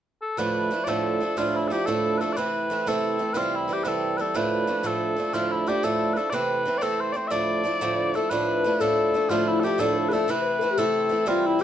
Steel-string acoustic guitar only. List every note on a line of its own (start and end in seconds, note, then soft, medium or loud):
0.37 0.71 D2 medium
0.37 0.72 A2 medium
0.37 0.69 F3 medium
0.37 0.71 A3 medium
0.37 0.71 D4 medium
0.37 0.73 E4 medium
0.71 0.86 F3 medium
0.71 0.87 A3 medium
0.71 0.87 D4 medium
0.71 0.87 E4 medium
0.87 1.21 D2 medium
0.87 1.21 A2 medium
0.87 1.19 F3 medium
0.87 1.21 A3 medium
0.87 1.21 D4 medium
0.87 1.23 E4 medium
1.20 1.36 F3 soft
1.20 1.37 A3 soft
1.20 1.37 D4 soft
1.20 1.37 E4 soft
1.37 1.71 D2 medium
1.37 1.71 A2 medium
1.37 1.69 F3 medium
1.37 1.70 A3 medium
1.37 1.71 D4 medium
1.37 1.73 E4 medium
1.70 1.87 F3 medium
1.70 1.87 A3 medium
1.70 1.87 D4 medium
1.70 1.87 E4 medium
1.87 2.21 D2 medium
1.87 2.21 A2 medium
1.87 2.20 F3 medium
1.87 2.20 A3 medium
1.87 2.21 D4 medium
1.87 2.23 E4 medium
2.21 2.37 F3 medium
2.21 2.36 A3 medium
2.21 2.37 D4 medium
2.21 2.37 E4 medium
2.37 2.70 C3 medium
2.37 2.69 E3 medium
2.37 2.70 A3 medium
2.37 2.71 C4 medium
2.37 2.73 E4 medium
2.70 2.86 E3 medium
2.70 2.86 A3 medium
2.70 2.87 C4 medium
2.70 2.87 E4 medium
2.86 3.20 C3 medium
2.86 3.19 E3 medium
2.86 3.19 A3 medium
2.86 3.19 C4 medium
2.86 3.21 E4 medium
3.19 3.34 E3 medium
3.19 3.35 A3 medium
3.19 3.35 C4 soft
3.19 3.35 E4 soft
3.34 3.69 C3 medium
3.34 3.67 E3 medium
3.34 3.68 G3 medium
3.34 3.69 C4 medium
3.34 3.70 E4 medium
3.68 3.84 E3 soft
3.68 3.84 G3 medium
3.68 3.85 C4 medium
3.68 3.85 E4 medium
3.85 4.19 C3 medium
3.85 4.18 E3 medium
3.85 4.18 G3 medium
3.85 4.19 C4 medium
3.85 4.20 E4 medium
4.18 4.35 E3 soft
4.18 4.35 G3 medium
4.18 4.35 C4 soft
4.18 4.35 E4 soft
4.34 4.68 D2 medium
4.34 4.68 A2 medium
4.34 4.66 F3 medium
4.34 4.68 A3 medium
4.34 4.68 D4 medium
4.34 4.70 E4 medium
4.67 4.83 F3 medium
4.67 4.83 A3 medium
4.67 4.84 D4 medium
4.67 4.84 E4 medium
4.83 5.17 D2 medium
4.83 5.18 A2 medium
4.83 5.15 F3 medium
4.83 5.18 A3 medium
4.83 5.17 D4 medium
4.83 5.19 E4 medium
5.17 5.33 F3 soft
5.17 5.34 A3 soft
5.17 5.33 D4 soft
5.17 5.34 E4 medium
5.33 5.67 D2 medium
5.33 5.68 A2 medium
5.33 5.65 F3 medium
5.33 5.67 A3 medium
5.33 5.67 D4 medium
5.33 5.69 E4 medium
5.67 5.83 F3 soft
5.67 5.83 A3 medium
5.67 5.83 D4 medium
5.67 5.84 E4 medium
5.83 6.17 D2 medium
5.83 6.17 A2 medium
5.83 6.15 F3 medium
5.83 6.17 A3 medium
5.83 6.17 D4 medium
5.83 6.19 E4 medium
6.16 6.32 F3 soft
6.16 6.33 A3 soft
6.16 6.34 D4 soft
6.16 6.33 E4 medium
6.32 6.66 C3 medium
6.32 6.65 E3 medium
6.32 6.67 A3 medium
6.32 6.65 C4 medium
6.32 6.68 E4 medium
6.66 6.81 E3 medium
6.66 6.81 A3 medium
6.66 6.81 C4 medium
6.66 6.82 E4 medium
6.81 7.15 C3 medium
6.81 7.13 E3 medium
6.81 7.15 A3 medium
6.81 7.14 C4 medium
6.81 7.16 E4 medium
7.14 7.31 E3 soft
7.14 7.30 A3 soft
7.14 7.31 C4 soft
7.14 7.31 E4 soft
7.30 7.65 D2 medium
7.30 7.65 A2 medium
7.30 7.63 F3 medium
7.30 7.64 A3 medium
7.30 7.65 D4 medium
7.30 7.66 E4 medium
7.64 7.81 F3 medium
7.64 7.81 A3 soft
7.64 7.81 D4 medium
7.64 7.81 E4 medium
7.81 8.15 D2 medium
7.81 8.15 A2 medium
7.81 8.14 F3 medium
7.81 8.15 A3 medium
7.81 8.16 D4 medium
7.81 8.17 E4 medium
8.14 8.30 F3 medium
8.14 8.30 A3 medium
8.14 8.31 D4 soft
8.14 8.31 E4 medium
8.31 8.64 D2 medium
8.31 8.64 A2 medium
8.31 8.63 F3 medium
8.31 8.65 A3 medium
8.31 8.65 D4 medium
8.31 8.67 E4 medium
8.64 8.80 F3 medium
8.64 8.80 A3 soft
8.64 8.81 D4 medium
8.64 8.81 E4 medium
8.80 9.14 D2 medium
8.80 9.14 A2 medium
8.80 9.13 F3 medium
8.80 9.15 A3 medium
8.80 9.14 D4 medium
8.80 9.16 E4 medium
9.14 9.29 F3 soft
9.14 9.30 A3 soft
9.14 9.30 D4 medium
9.14 9.30 E4 medium
9.29 9.63 D2 medium
9.29 9.63 A2 medium
9.29 9.62 F3 medium
9.29 9.63 A3 medium
9.29 9.64 D4 medium
9.29 9.66 E4 medium
9.63 9.78 F3 soft
9.63 9.78 A3 medium
9.63 9.79 D4 medium
9.63 9.79 E4 medium
9.78 10.12 D2 medium
9.78 10.12 A2 medium
9.78 10.10 F3 medium
9.78 10.12 A3 medium
9.78 10.12 D4 medium
9.78 10.14 E4 medium
10.11 10.28 F3 medium
10.11 10.28 A3 medium
10.11 10.29 D4 medium
10.11 10.28 E4 medium
10.28 10.61 C3 medium
10.28 10.61 E3 medium
10.28 10.61 A3 medium
10.28 10.62 C4 medium
10.28 10.64 E4 medium
10.61 10.76 E3 medium
10.61 10.77 A3 medium
10.61 10.77 C4 medium
10.61 10.78 E4 medium
10.78 11.11 C3 medium
10.78 11.09 E3 medium
10.78 11.09 A3 medium
10.78 11.10 C4 medium
10.78 11.12 E4 medium
11.09 11.25 E3 medium
11.09 11.26 A3 soft
11.09 11.26 C4 medium
11.09 11.26 E4 medium
11.26 11.60 C3 medium
11.26 11.59 E3 medium
11.26 11.59 G3 medium
11.26 11.60 C4 medium
11.26 11.62 E4 medium
11.59 11.64 E3 medium
11.59 11.64 G3 medium